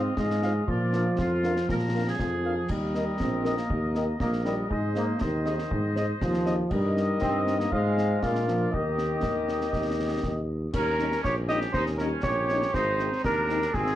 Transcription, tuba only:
0.18 G#2
0.69 A#2
1.19 F2
1.70 A#2
2.20 F2
2.70 D#2
3.20 A#1
3.71 D#2
4.21 A#1
4.71 G#2
5.21 D#2
5.72 G#2
6.21 D#2
6.72 G2
7.23 G2
7.72 G#2
8.23 A#2
8.73 D#2
9.24 D#2
9.74 D#2
10.24 D#2
10.75 D#2
11.25 A#1
11.75 D#2
12.24 A#1
12.74 G#1
13.25 D#2
13.75 G#1

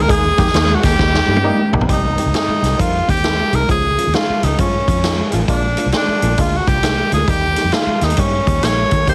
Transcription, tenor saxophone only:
0.02 A#4
0.10 G#4
0.75 F#4
0.85 G4
1.93 D#4
2.38 D#4
2.80 F4
3.11 G4
3.55 A#4
3.71 G#4
4.15 F4
4.44 D#4
4.60 C#4
5.50 D4
5.96 D4
6.41 F4
6.57 F#4
6.68 G4
7.14 G#4
7.29 G4
7.74 F4
8.04 D#4
8.20 C#4
8.65 C#5
9.09 C5

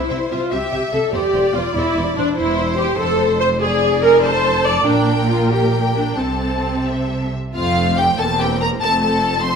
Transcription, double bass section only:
0.11 C2
0.32 C2
0.52 C2
0.73 C2
0.93 C2
1.14 E1
1.34 E1
1.55 E1
1.75 E1
1.97 E1
2.17 E1
2.37 E1
2.99 F1
4.86 A#1
6.18 C2
7.55 F1
8.19 E1
8.82 F1

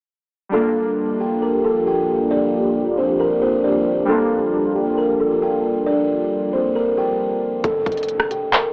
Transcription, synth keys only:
0.49 G3 D4
0.53 A#3 F4
4.05 G3 D4
4.09 A#3 F4

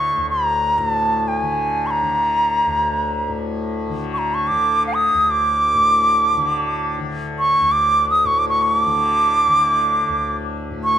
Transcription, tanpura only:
Already playing: D2 A2 D3
0.17 D2
0.78 A2
1.42 D3
2.03 D3
2.66 D2
3.28 A2
3.89 D3
4.51 D3
5.14 D2
5.75 A2
6.37 D3
6.99 D3
7.61 D2
8.24 A2
8.85 D3
9.47 D3
10.09 D2
10.70 A2

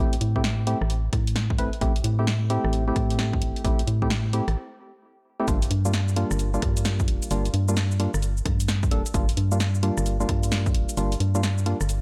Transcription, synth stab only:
0.00 A3 C4 E4 G4
0.36 A3 C4 E4 G4
0.67 A3 C4 E4 G4
1.58 A3 C4 E4 B4
1.81 A3 C4 E4 G4
2.19 A3 C4 E4 G4
2.50 A3 C4 E4 G4
2.88 A3 C4 E4 G4
3.64 A3 C4 E4 G4
4.02 A3 C4 E4 G4
4.33 A3 C4 E4 G4
5.40 A3 C4 E4 G4
5.48 G3 A#3 D4 F4
5.85 G3 A#3 D4 F4
6.16 G3 A#3 D4 F4
6.54 G3 A#3 D4 F4
7.31 G3 A#3 D4 F4
7.68 G3 A#3 D4 F4
8.00 G3 A#3 D4 F4
8.91 G3 A#3 D4 A4
9.14 G3 A#3 D4 F4
9.52 G3 A#3 D4 F4
9.83 G3 A#3 D4 F4
10.20 G3 A#3 D4 F4
10.97 G3 A#3 D4 F4
11.35 G3 A#3 D4 F4
11.66 G3 A#3 D4 F4

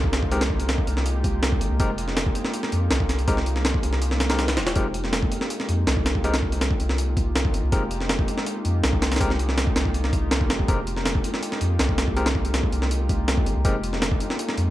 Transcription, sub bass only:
Already playing: C2
0.87 C2
1.61 G#1
1.71 C2
1.80 F1
2.72 F2
2.91 C2
3.84 C2
4.58 D#1
4.76 F1
5.69 F2
5.87 C2
6.80 C2
7.54 G#1
7.63 C2
7.72 F1
8.65 F2
8.84 C2
9.76 C2
10.50 D#1
10.68 F1
11.61 F2
11.80 C2
12.72 C2
13.46 G#1
13.56 C2
13.65 F1
14.57 F2

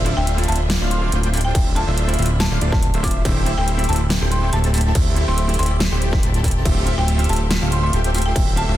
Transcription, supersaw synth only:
Already playing: A3 D4 F4 C5 E5
0.17 A3 D4 F4 C5 E5
0.48 A3 D4 F4 C5 E5
0.81 A3 D4 F4 C5 F5
1.12 A3 D4 F4 C5 G5
1.55 A3 D4 F4 C5 E5
1.87 A3 D4 F4 C5 E5
2.19 A3 D4 F4 C5 E5
2.51 A3 D4 F4 C5 F5
2.61 A3 D4 F4 C5 D5
2.94 A3 D4 F4 C5 E5
3.25 A3 E4 G4 C5 E5
3.58 A3 E4 G4 C5 E5
3.89 A3 E4 G4 C5 E5
4.21 A3 E4 G4 C5 G5
4.53 A3 E4 G4 C5 A5
4.95 A3 E4 G4 C5 E5
5.28 A3 E4 G4 C5 E5
5.59 A3 E4 G4 C5 E5
5.92 A3 E4 G4 C5 G5
6.23 A3 E4 G4 C5 A5
6.66 A3 F4 G4 C5 E5
6.98 A3 F4 G4 C5 E5
7.29 A3 F4 G4 C5 E5
7.62 A3 F4 G4 C5 F5
7.93 A3 F4 G4 C5 G5
8.36 A3 F4 G4 C5 E5
8.68 A3 F4 G4 C5 E5

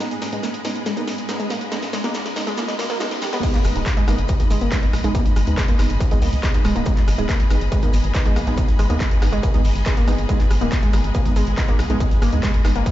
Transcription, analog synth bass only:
3.65 G#1
3.76 D#1
4.08 G#1
4.18 G#1
4.40 G#1
4.51 G#1
4.61 G#1
4.93 B1
5.04 B1
5.36 G#1
5.47 D#2
5.79 G#1
5.90 G#1
6.11 C#2
6.22 C#2
6.33 C#2
6.65 D#1
6.76 D#1
7.08 G#1
7.19 D#1
7.51 G#1
7.61 G#1
7.83 G#1
7.93 G#1
8.04 G#1
8.36 B1
8.47 B1
8.79 G#1
8.90 D#2
9.22 G#1
9.33 G#1
9.54 C#2
9.65 G#1
9.76 G#1
10.08 G#1
10.18 G#1
10.51 G#1
10.61 D#1
10.93 G#1
11.04 G#1
11.26 G#1
11.36 G#1
11.47 G#1
11.79 B1
11.90 B1
12.22 G#1
12.33 D#2
12.65 G#1
12.76 G#1

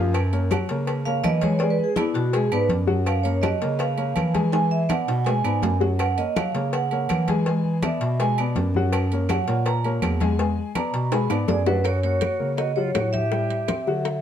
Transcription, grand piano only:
Already playing: F3 F4 F5
0.33 A#3 A#4 C#5
0.51 F#3 F#4 F#5
0.70 A#3 A#4 C#5
1.07 A#3 A#4 C#5
1.42 G#3 G#4 G#5
1.61 G#3 G#4 G#5
1.98 B3 B4 D5
2.35 G#3 G#4 G#5
2.52 B3 B4 D5
2.87 F#3 F#4 F#5
3.25 A#3 A#4 C#5
3.43 F#3 F#4 F#5
3.62 A#3 A#4 C#5
3.97 A#3 A#4 C#5
4.34 G#3 G#4 G#5
4.53 G#3 G#4 G#5
4.89 B3 B4 D5
5.27 G#3 G#4 G#5
5.44 B3 B4 D5
5.80 F#3 F#4 F#5
6.18 A#3 A#4 C#5
6.36 F#3 F#4 F#5
6.55 A#3 A#4 C#5
6.92 A#3 A#4 C#5
7.29 G#3 G#4 G#5
7.47 G#3 G#4 G#5
7.84 B3 B4 D5
8.20 G#3 G#4 G#5
8.39 B3 B4 D5
8.76 F#3 F#4 F#5
9.13 A#3 A#4 C#5
9.30 F#3 F#4 F#5
9.48 A#3 A#4 C#5
9.85 A#3 A#4 C#5
10.21 G#3 G#4 G#5
10.39 G#3 G#4 G#5
10.76 B3 B4 D5
11.12 G#3 G#4 G#5
11.30 B3 B4 D5
11.67 F#3 F#4 F#5
12.04 A#3 A#4 C#5
12.40 A#3 A#4 C#5
12.77 F#3 F#4 F#5
12.94 F#3 F#4 F#5
13.32 G3 G4 G5
13.68 C4 C5 E5
13.87 F#3 F#4 F#5

